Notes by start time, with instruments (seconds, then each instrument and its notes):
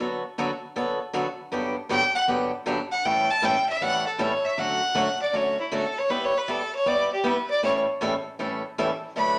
0.00 steel-string acoustic guitar D3 F#3 B3 F#4 A4
0.38 steel-string acoustic guitar D3 F#3 B3 F#4 A4
0.76 steel-string acoustic guitar D3 F#3 B3 F#4 A4
1.13 steel-string acoustic guitar D3 F#3 B3 F#4 A4
1.52 steel-string acoustic guitar G2 D3 F#3 B3 D4 G4
1.89 steel-string acoustic guitar G2 D3 F#3 B3 D4 G4, fiddle G5
2.15 fiddle F#5
2.28 steel-string acoustic guitar G2 D3 F#3 B3 D4 G4
2.66 steel-string acoustic guitar G2 D3 F#3 B3 D4 G4
2.92 fiddle F#5
3.05 steel-string acoustic guitar A2 E3 G3 C#4 E4 A4, fiddle G5
3.31 fiddle A5
3.42 steel-string acoustic guitar A2 E3 G3 C#4 E4 A4, fiddle G5
3.69 fiddle E5
3.81 steel-string acoustic guitar A2 E3 G3 C#4 E4 A4, fiddle F#5
4.07 fiddle A4
4.18 steel-string acoustic guitar A2 E3 G3 C#4 E4 A4, fiddle C#5
4.45 fiddle E5
4.57 steel-string acoustic guitar D3 F#3 A3 C#4 F#4, fiddle F#5
4.95 steel-string acoustic guitar D3 F#3 A3 C#4 F#4
5.22 fiddle D5
5.33 steel-string acoustic guitar D3 F#3 A3 C#4 F#4, fiddle C#5
5.60 fiddle E4
5.72 steel-string acoustic guitar D3 F#3 A3 C#4 F#4, fiddle A4
5.99 fiddle C#5
6.10 steel-string acoustic guitar G3 B3 E4 G4, fiddle B4
6.24 fiddle C#5
6.38 fiddle B4
6.48 steel-string acoustic guitar G3 B3 E4 G4, fiddle A4
6.75 fiddle C#5
6.86 steel-string acoustic guitar G3 B3 E4 G4, fiddle D5
7.13 fiddle G4
7.24 steel-string acoustic guitar G3 B3 E4 G4, fiddle B4
7.50 fiddle D5
7.63 steel-string acoustic guitar A2 E3 G3 C#4 E4 A4, fiddle C#5
8.01 steel-string acoustic guitar A2 E3 G3 C#4 E4 A4
8.39 steel-string acoustic guitar A2 E3 G3 C#4 E4 A4
8.78 steel-string acoustic guitar A2 E3 G3 C#4 E4 A4
9.16 steel-string acoustic guitar D3 F#3 A3 D4 F#4 B4, fiddle B5